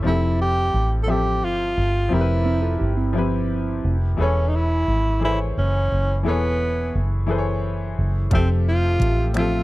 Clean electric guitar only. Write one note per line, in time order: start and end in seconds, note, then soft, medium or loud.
2.45 2.62 C4 medium
2.45 2.61 E4 medium
2.62 2.79 F4 medium
2.62 2.78 A4 medium
2.79 2.95 E4 medium
2.79 2.95 G4 medium
2.96 3.96 C4 medium
2.96 3.96 E4 medium